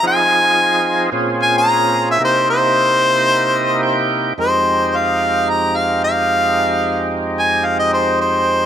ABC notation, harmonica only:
X:1
M:4/4
L:1/16
Q:1/4=111
K:Fm
V:1 name="Harmonica"
a8 z2 a b4 =e | c2 c12 z2 | c4 f4 b2 f2 f4- | f4 z2 a2 f e c2 c4 |]